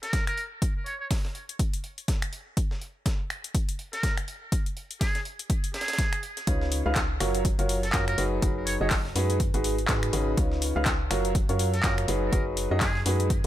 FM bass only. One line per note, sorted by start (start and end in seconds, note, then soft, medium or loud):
6.47 6.83 C#2 medium
6.86 7.18 C#2 medium
7.21 7.56 F#1 loud
7.59 7.92 F#1 medium
7.94 8.16 F#2 medium
8.18 8.40 F#1 medium
8.42 8.78 F#1 medium
8.81 9.13 F#1 medium
9.16 9.51 F#2 medium
9.54 9.87 G#1 medium
9.89 10.11 G#2 medium
10.13 10.35 G#1 medium
10.38 10.73 C#2 medium
10.76 11.09 C#2 medium
11.11 11.46 F#1 medium
11.49 11.82 F#2 loud
11.84 12.06 F#2 medium
12.08 12.31 F#1 medium
12.33 12.68 F#1 medium
12.71 13.04 F#2 loud
13.06 13.41 F#2 loud